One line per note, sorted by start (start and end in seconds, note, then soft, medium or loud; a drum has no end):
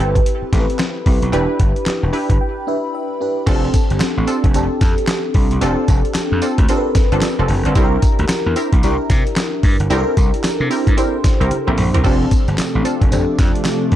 0.00 0.19 G1 medium
0.00 0.19 C4 medium
0.00 0.53 C4 medium
0.00 0.19 E4 medium
0.00 0.53 E4 medium
0.00 0.20 G4 medium
0.00 0.54 G4 medium
0.00 0.20 A4 medium
0.00 0.60 B4 loud
0.15 kick medium
0.15 closed hi-hat medium
0.26 closed hi-hat medium
0.42 muted slap bass stroke soft
0.53 0.65 A1 medium
0.53 0.95 C4 medium
0.53 0.95 E4 medium
0.53 0.95 G4 medium
0.53 0.61 A4 medium
0.53 kick loud
0.53 snare medium
0.53 closed hi-hat medium
0.60 0.99 B4 medium
0.70 closed hi-hat soft
0.79 snare loud
0.79 clap medium
0.79 closed hi-hat medium
1.06 1.19 C2 medium
1.06 1.28 C4 medium
1.06 1.28 E4 medium
1.06 1.28 G4 medium
1.06 1.28 B4 medium
1.06 kick medium
1.06 open hi-hat medium
1.22 1.30 B1 medium
1.22 closed hi-hat medium
1.32 1.45 E1 loud
1.32 1.58 D4 medium
1.32 2.12 D4 medium
1.32 1.58 E4 medium
1.32 2.12 E4 medium
1.32 1.58 G4 medium
1.32 2.12 G4 medium
1.32 1.58 B4 loud
1.32 2.13 B4 loud
1.32 closed hi-hat medium
1.60 1.72 G1 medium
1.60 kick loud
1.60 closed hi-hat medium
1.76 closed hi-hat soft
1.86 muted slap bass stroke soft
1.86 snare loud
1.86 clap medium
1.86 closed hi-hat medium
2.03 2.11 E1 medium
2.13 2.33 D4 medium
2.13 2.34 E4 medium
2.13 2.34 G4 medium
2.13 2.34 B4 medium
2.13 2.39 B5 medium
2.13 open hi-hat medium
2.30 2.38 G1 loud
2.30 kick medium
2.30 closed hi-hat medium
2.41 2.65 G5 medium
2.67 3.09 D4 medium
2.67 3.10 E4 medium
2.67 3.10 G4 medium
2.67 3.10 B4 medium
2.67 2.92 E5 medium
2.95 3.44 E5 medium
3.21 3.42 D4 medium
3.21 3.42 E4 medium
3.21 3.42 G4 medium
3.21 3.42 B4 medium
3.46 3.67 F1 loud
3.46 3.72 C4 medium
3.46 4.26 C4 medium
3.46 3.72 D4 medium
3.46 4.26 D4 medium
3.46 3.72 F4 medium
3.46 4.27 G4 medium
3.46 3.56 G#4 medium
3.46 3.72 A4 loud
3.46 kick loud
3.46 closed hi-hat medium
3.46 crash loud
3.46 tambourine medium
3.55 4.30 A4 loud
3.74 kick loud
3.74 closed hi-hat medium
3.74 tambourine medium
3.90 3.98 G1 medium
3.90 closed hi-hat soft
4.00 muted slap bass stroke soft
4.00 snare loud
4.00 clap medium
4.00 closed hi-hat medium
4.00 tambourine loud
4.17 4.25 A1 medium
4.27 4.48 C4 medium
4.27 4.48 D4 medium
4.27 4.48 F4 medium
4.27 4.48 A4 medium
4.27 closed hi-hat medium
4.27 tambourine medium
4.44 4.52 F1 medium
4.44 kick medium
4.44 closed hi-hat medium
4.54 4.67 F1 loud
4.54 5.34 C4 medium
4.54 5.34 D4 medium
4.54 5.34 G4 medium
4.54 5.34 A4 loud
4.54 closed hi-hat medium
4.54 tambourine medium
4.81 4.94 F2 loud
4.81 kick loud
4.81 snare medium
4.81 closed hi-hat medium
4.81 tambourine medium
4.98 closed hi-hat medium
5.07 snare loud
5.07 clap medium
5.07 closed hi-hat medium
5.07 tambourine loud
5.34 5.47 C2 loud
5.34 kick loud
5.34 open hi-hat medium
5.51 5.59 C2 medium
5.51 closed hi-hat medium
5.61 5.74 F1 loud
5.61 5.87 C4 medium
5.61 6.41 C4 medium
5.61 5.87 D4 medium
5.61 6.41 D4 medium
5.61 5.87 F4 medium
5.61 6.41 G4 medium
5.61 5.87 A4 loud
5.61 6.41 A4 loud
5.61 closed hi-hat medium
5.61 tambourine medium
5.88 6.01 F1 medium
5.88 kick medium
5.88 closed hi-hat medium
5.88 tambourine medium
6.05 closed hi-hat soft
6.15 muted slap bass stroke soft
6.15 snare loud
6.15 clap medium
6.15 closed hi-hat medium
6.15 tambourine loud
6.32 6.40 F2 loud
6.42 6.62 C4 medium
6.42 6.62 D4 medium
6.42 6.63 F4 medium
6.42 6.63 A4 medium
6.42 closed hi-hat medium
6.42 tambourine medium
6.58 6.66 D2 medium
6.58 kick medium
6.58 closed hi-hat medium
6.68 6.89 C4 medium
6.68 7.48 C4 medium
6.68 6.89 D4 medium
6.68 7.48 D4 medium
6.68 6.90 F4 medium
6.68 7.48 G4 medium
6.68 6.90 A4 medium
6.68 6.77 A#4 medium
6.68 closed hi-hat medium
6.68 tambourine medium
6.77 7.52 B4 medium
6.95 muted slap bass stroke medium
6.95 kick loud
6.95 snare medium
6.95 closed hi-hat medium
6.95 tambourine medium
7.12 7.20 G1 medium
7.12 7.29 C4 medium
7.12 7.29 D4 medium
7.12 7.29 F4 medium
7.12 7.29 A4 medium
7.12 closed hi-hat medium
7.21 snare loud
7.21 clap medium
7.21 closed hi-hat medium
7.21 tambourine medium
7.39 7.47 F1 medium
7.39 7.55 C4 medium
7.39 7.55 D4 medium
7.39 7.56 F4 medium
7.39 7.56 A4 medium
7.48 7.62 F1 medium
7.48 open hi-hat medium
7.65 7.73 G1 medium
7.65 7.74 C4 medium
7.65 7.82 D4 medium
7.65 7.82 F4 medium
7.65 7.83 A4 medium
7.65 closed hi-hat medium
7.75 7.96 C2 loud
7.75 8.01 C4 medium
7.75 8.55 D4 medium
7.75 8.01 E4 medium
7.75 8.55 E4 medium
7.75 8.01 G4 medium
7.75 8.56 G4 medium
7.75 7.85 A4 medium
7.75 8.01 A#4 loud
7.75 kick loud
7.75 closed hi-hat medium
7.75 tambourine medium
7.84 8.59 A#4 loud
8.02 kick loud
8.02 closed hi-hat medium
8.02 tambourine medium
8.19 8.27 D2 medium
8.19 closed hi-hat soft
8.29 muted slap bass stroke soft
8.29 snare loud
8.29 clap medium
8.29 closed hi-hat medium
8.29 tambourine loud
8.46 8.54 E2 medium
8.56 8.77 C4 medium
8.56 8.77 E4 medium
8.56 8.77 G4 medium
8.56 8.77 A#4 medium
8.56 closed hi-hat medium
8.56 tambourine medium
8.73 8.80 C2 loud
8.73 kick medium
8.73 closed hi-hat medium
8.83 8.95 C2 medium
8.83 9.62 D4 medium
8.83 9.63 E4 medium
8.83 9.63 G4 medium
8.83 9.63 A#4 loud
8.83 closed hi-hat medium
8.83 tambourine medium
9.10 9.22 C3 loud
9.10 kick loud
9.10 snare medium
9.10 closed hi-hat medium
9.10 tambourine medium
9.27 closed hi-hat medium
9.36 snare loud
9.36 clap medium
9.36 closed hi-hat medium
9.36 tambourine medium
9.63 9.76 G2 medium
9.63 kick medium
9.63 open hi-hat medium
9.80 9.88 G1 medium
9.80 closed hi-hat medium
9.90 10.03 C2 loud
9.90 10.15 C4 loud
9.90 10.69 D4 medium
9.90 10.15 E4 medium
9.90 10.70 E4 medium
9.90 10.15 G4 medium
9.90 10.70 G4 medium
9.90 9.99 A4 medium
9.90 10.15 A#4 loud
9.90 closed hi-hat medium
9.90 tambourine medium
9.98 10.73 A#4 loud
10.17 10.30 C2 medium
10.17 kick loud
10.17 closed hi-hat medium
10.17 tambourine medium
10.34 closed hi-hat soft
10.44 muted slap bass stroke soft
10.44 snare loud
10.44 clap medium
10.44 closed hi-hat medium
10.44 tambourine loud
10.60 10.68 C3 medium
10.70 10.91 C4 medium
10.70 10.91 E4 medium
10.70 10.91 G4 medium
10.70 10.91 A#4 medium
10.70 open hi-hat medium
10.70 tambourine medium
10.87 10.95 G2 medium
10.87 kick medium
10.87 closed hi-hat medium
10.97 11.18 C4 medium
10.97 11.76 D4 medium
10.97 11.18 E4 medium
10.97 11.77 E4 medium
10.97 11.18 G4 medium
10.97 11.77 G4 medium
10.97 11.18 A#4 medium
10.97 11.77 C5 loud
10.97 closed hi-hat medium
10.97 tambourine medium
11.24 muted slap bass stroke soft
11.24 kick loud
11.24 snare medium
11.24 closed hi-hat medium
11.24 tambourine medium
11.40 11.48 C2 medium
11.40 11.57 C4 medium
11.40 11.57 E4 medium
11.40 11.57 G4 medium
11.40 11.57 A#4 medium
11.40 closed hi-hat soft
11.51 closed hi-hat medium
11.51 high tom medium
11.67 11.75 A#1 medium
11.67 11.84 C4 medium
11.67 11.84 E4 medium
11.67 11.84 G4 medium
11.67 11.84 A#4 medium
11.67 mid tom medium
11.78 11.90 A#1 loud
11.78 mid tom medium
11.78 open hi-hat medium
11.94 12.02 C2 medium
11.94 12.02 C4 medium
11.94 12.11 E4 medium
11.94 12.11 G4 medium
11.94 12.11 A#4 medium
11.94 closed hi-hat medium
11.94 floor tom loud
12.04 12.25 F1 loud
12.04 13.96 C3 medium
12.04 13.96 F3 medium
12.04 13.96 A3 medium
12.04 12.29 C4 loud
12.04 12.84 C4 medium
12.04 12.29 D4 medium
12.04 12.84 D4 medium
12.04 13.96 D4 medium
12.04 12.29 F4 medium
12.04 12.84 G4 medium
12.04 12.30 A4 loud
12.04 12.84 A4 medium
12.04 kick loud
12.04 crash medium
12.04 tambourine medium
12.31 kick loud
12.31 closed hi-hat medium
12.31 tambourine medium
12.48 12.56 G1 medium
12.48 closed hi-hat soft
12.58 muted slap bass stroke soft
12.58 snare loud
12.58 clap medium
12.58 closed hi-hat medium
12.58 tambourine loud
12.75 12.83 A1 loud
12.85 13.05 C4 medium
12.85 13.05 D4 medium
12.85 13.05 F4 medium
12.85 13.05 A4 medium
12.85 closed hi-hat medium
12.85 tambourine medium
13.01 13.09 F1 medium
13.01 kick medium
13.01 closed hi-hat medium
13.12 13.24 F1 loud
13.12 13.91 C4 medium
13.12 13.91 D4 medium
13.12 13.91 G4 medium
13.12 13.91 A4 medium
13.12 closed hi-hat medium
13.12 tambourine medium
13.38 13.51 F2 medium
13.38 kick loud
13.38 snare medium
13.38 closed hi-hat medium
13.38 tambourine medium
13.55 closed hi-hat medium
13.65 snare loud
13.65 clap medium
13.65 closed hi-hat medium
13.65 tambourine medium
13.92 13.96 C2 loud
13.92 kick medium
13.92 open hi-hat medium